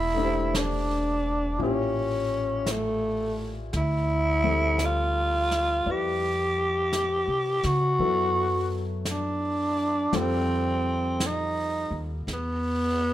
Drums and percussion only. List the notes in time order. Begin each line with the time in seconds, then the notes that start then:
0.55 brush sweep, snare, hi-hat pedal
1.60 brush sweep
2.66 brush sweep, snare, hi-hat pedal
3.73 brush sweep, snare
4.79 brush sweep, snare, hi-hat pedal
5.51 snare
5.86 brush sweep
6.93 brush sweep, snare, hi-hat pedal
7.63 snare
7.98 brush sweep
9.05 brush sweep, snare, hi-hat pedal
10.13 brush sweep, snare
11.20 brush sweep, snare, hi-hat pedal
12.28 brush sweep, snare